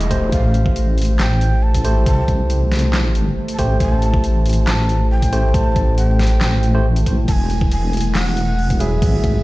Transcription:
Already playing: E1 E3 A3 D#5, noise sweep
0.01 closed hi-hat
0.11 A3 G4 C5, kick, open hi-hat
0.32 A1 E3 A3 F5, kick, closed hi-hat
0.54 closed hi-hat
0.66 kick
0.76 closed hi-hat
0.98 closed hi-hat
1.02 closed hi-hat
1.05 closed hi-hat
1.19 A1 G5, snare, clap, closed hi-hat
1.41 closed hi-hat
1.63 A5
1.74 kick, closed hi-hat
1.85 A3 G4 C5, open hi-hat
2.06 C2 A5, kick, closed hi-hat
2.28 kick, closed hi-hat
2.50 closed hi-hat
2.72 snare, closed hi-hat
2.75 closed hi-hat
2.79 closed hi-hat
2.93 snare, clap, closed hi-hat
3.15 closed hi-hat
3.48 closed hi-hat
3.54 A5
3.59 A1 A3 G4 C5 G5, kick, open hi-hat
3.80 A1 G#5, kick, closed hi-hat
3.97 A5
4.02 closed hi-hat
4.14 kick
4.24 closed hi-hat
4.46 closed hi-hat
4.49 closed hi-hat
4.53 closed hi-hat
4.67 A1 A5, snare, clap, closed hi-hat
4.89 closed hi-hat
5.11 G5
5.22 kick, closed hi-hat
5.33 A3 G4 C5, open hi-hat
5.54 A1 A5, kick, closed hi-hat
5.76 kick, closed hi-hat
5.98 G5, closed hi-hat
6.19 snare, closed hi-hat
6.23 closed hi-hat
6.27 closed hi-hat
6.41 A1, snare, clap, closed hi-hat
6.63 closed hi-hat
6.75 A3 G4 C5
6.96 closed hi-hat
7.06 A1, kick, open hi-hat
7.28 E1 A5, kick, closed hi-hat, crash
7.32 G#5
7.50 closed hi-hat
7.61 kick
7.72 G#5, closed hi-hat, crash
7.93 closed hi-hat
7.97 closed hi-hat
8.01 closed hi-hat
8.15 E1 F#5, snare, clap, closed hi-hat, crash
8.37 closed hi-hat
8.58 crash
8.70 kick, closed hi-hat
8.80 F#3 E4 G#4 E5, open hi-hat
9.02 G#1 E5, kick, closed hi-hat, crash
9.24 kick, closed hi-hat

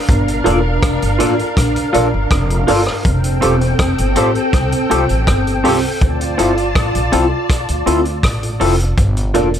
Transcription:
Already playing: D4 A#4 F5
0.09 G1, kick, closed hi-hat
0.28 closed hi-hat
0.44 E1 A#3 D4 F4 A4 A#4 D5, closed hi-hat
0.83 F1, kick, cross-stick, closed hi-hat
1.02 G1, closed hi-hat
1.18 A1 A#3 D4 F4 A4 A#4 D5, closed hi-hat
1.38 F4 A4, closed hi-hat
1.57 A#1, kick, cross-stick, closed hi-hat
1.76 closed hi-hat
1.93 A#1 A#3 D4 F4 A4 A#4 D5, closed hi-hat
2.14 G1
2.31 F1, kick, cross-stick, closed hi-hat
2.50 F4 A4, closed hi-hat
2.67 G1 A#3 D4 F4 A4 A#4 D5, open hi-hat
2.87 cross-stick
3.05 F1 C4 A4 G5, kick, closed hi-hat
3.24 closed hi-hat
3.41 E1 C4 F4 G4 A4, closed hi-hat
3.61 closed hi-hat
3.79 F1, kick, cross-stick, closed hi-hat
3.98 G1, closed hi-hat
4.16 A1 C4 F4 G4 A4, closed hi-hat
4.35 G4 A4, closed hi-hat
4.53 C2, kick, cross-stick, closed hi-hat
4.72 closed hi-hat
4.90 C2 C4 F4 G4 A4, closed hi-hat
5.09 A1, closed hi-hat
5.27 G1, kick, cross-stick, closed hi-hat
5.47 G4 A4, closed hi-hat
5.64 C2 C4 F4 G4 A4, open hi-hat
6.01 D2 F4 D5 A5, kick, closed hi-hat
6.21 closed hi-hat
6.38 G1 C4 E4 F4 A4, closed hi-hat
6.57 closed hi-hat
6.75 A1, kick, cross-stick, closed hi-hat
6.95 A#1, closed hi-hat
7.12 C2 C4 E4 F4 A4, closed hi-hat
7.31 F4 A4
7.50 kick, cross-stick, closed hi-hat
7.68 D2, closed hi-hat
7.86 D2 C4 E4 F4 A4, closed hi-hat
8.05 closed hi-hat
8.23 A1, kick, cross-stick, closed hi-hat
8.42 F4 A4, closed hi-hat
8.60 F1 C4 E4 F4 A4, open hi-hat
8.79 closed hi-hat
8.98 G1, kick, closed hi-hat
9.17 closed hi-hat
9.34 E1 A#3 D4 F4 A4 A#4 D5, closed hi-hat
9.54 closed hi-hat

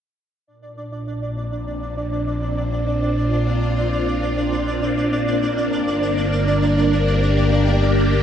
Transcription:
0.47 A#1 A#2 D4 D5
1.09 A#3
1.30 C4
1.39 D4
2.63 F4
5.27 G1
6.87 G4

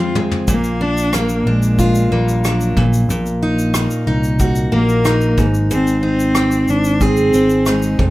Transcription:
Already playing: F2 G#3 C4 F4
0.15 G#3, mid tom
0.31 floor tom
0.48 A#1 A#2 A#3, kick, shaker
0.64 shaker
0.81 D4
0.97 shaker
1.13 A#3, cross-stick, shaker
1.29 shaker
1.46 A#1 G#3 D4
1.62 shaker
1.79 F4, kick, shaker
1.95 shaker
2.11 A#1 G3 A#3
2.28 shaker
2.44 F#3 D4, cross-stick, shaker
2.61 shaker
2.77 A#1 A#2, kick
2.93 shaker
3.08 A#1 A#2, shaker
3.26 shaker
3.42 D#4
3.59 shaker
3.74 A#3, cross-stick, shaker
3.90 shaker
4.07 C2 D#4, cross-stick
4.23 shaker
4.39 F#4, kick, shaker
4.55 shaker
4.72 A#1 A#3
4.89 shaker
5.05 D#4, cross-stick, shaker
5.21 shaker
5.38 G#1 G#2, kick, shaker
5.54 shaker
5.71 G#2 C4, shaker
5.87 shaker
6.03 C4 D#4
6.20 shaker
6.35 C4, cross-stick, shaker
6.51 shaker
6.68 G#1 D4, shaker
6.84 shaker
7.01 C4 G#4, kick, shaker
7.17 shaker
7.33 G#1 C4, shaker
7.50 shaker
7.66 G#3 D#4, cross-stick, shaker
7.82 shaker
7.99 F1 F2, kick

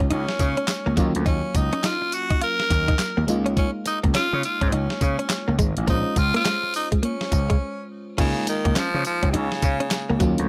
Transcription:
Already playing: G#3 A#3 D#4 F4
0.11 C#2 C#4 D#4, closed hi-hat
0.29 snare
0.39 C#3, muted clean electric guitar stroke, kick, closed hi-hat, tambourine
0.57 C#4, closed hi-hat
0.68 muted clean electric guitar stroke, snare, clap, closed hi-hat, tambourine
0.86 C#2 A#3
0.96 D#2 F#3 A#3 C#4 F4, kick, closed hi-hat, tambourine
1.15 D2, closed hi-hat
1.26 D#2 C#4 D#4, kick, closed hi-hat, tambourine
1.55 C#2 D#4, muted clean electric guitar stroke, kick, closed hi-hat, tambourine
1.73 C#4, closed hi-hat
1.84 D#4 F4, snare, clap, closed hi-hat, tambourine
2.02 muted clean electric guitar stroke
2.12 F#4, closed hi-hat, tambourine
2.30 D#4, kick, closed hi-hat
2.41 F4 A#4, closed hi-hat
2.60 snare
2.70 D#2, muted clean electric guitar stroke, kick, closed hi-hat, tambourine
2.88 D#4, kick, closed hi-hat
2.99 muted slap bass stroke, snare, clap, closed hi-hat, tambourine
3.17 D#2 A#3
3.27 C#2 G#3 A#3 D#4 F4, muted clean electric guitar stroke, closed hi-hat, tambourine
3.46 C#4, closed hi-hat
3.57 C#4, kick, closed hi-hat, tambourine
3.86 D#4, muted clean electric guitar stroke, closed hi-hat, tambourine
4.03 C#2 A#3, kick, closed hi-hat
4.14 C#4 F4, snare, clap, closed hi-hat, tambourine
4.33 C#3, muted clean electric guitar stroke
4.43 F4, closed hi-hat, tambourine
4.61 G#2 C#4, kick, closed hi-hat
4.69 C4 D#4, closed hi-hat
4.73 C#2 C#4
4.90 snare
5.01 C#3, muted clean electric guitar stroke, kick, closed hi-hat, tambourine
5.19 C#4, closed hi-hat
5.30 muted clean electric guitar stroke, snare, clap, closed hi-hat, tambourine
5.48 C#2 A#3
5.59 G#1 G#3, kick, closed hi-hat, tambourine
5.77 A1, closed hi-hat
5.87 A#1 G#3 A#3 C#4 D#4 F4 C5, kick, closed hi-hat, tambourine
6.16 C#2 F4, muted clean electric guitar stroke, kick, closed hi-hat, tambourine
6.34 A#3 F4, closed hi-hat
6.45 G#3, snare, clap, closed hi-hat, tambourine
6.63 muted clean electric guitar stroke
6.74 D#4, open hi-hat, tambourine
6.92 G#3, kick, closed hi-hat
7.03 A#3 C#4, closed hi-hat
7.21 snare
7.32 C#2, muted clean electric guitar stroke, kick, closed hi-hat, tambourine
7.50 G#3, kick, closed hi-hat
8.18 C#2 C#3 G#3 A#3 C#4 D#4 F4, kick, closed hi-hat, crash, tambourine
8.47 D#3, muted clean electric guitar stroke, closed hi-hat, tambourine
8.65 C#2 A#3, kick, closed hi-hat
8.76 F3 C#4, muted slap bass stroke, snare, clap, closed hi-hat, tambourine
8.94 C#3, muted clean electric guitar stroke
9.05 F3, closed hi-hat, tambourine
9.23 C#2 C#4, kick, closed hi-hat
9.30 C3 D#4, closed hi-hat
9.34 C#2 C#3
9.52 snare
9.62 C#3, muted clean electric guitar stroke, kick, closed hi-hat, tambourine
9.80 C#4, closed hi-hat
9.91 muted clean electric guitar stroke, snare, clap, closed hi-hat, tambourine
10.10 C#2 A#3
10.20 D#2 F#3 A#3 C#4 F4, kick, closed hi-hat, tambourine
10.38 D2, closed hi-hat

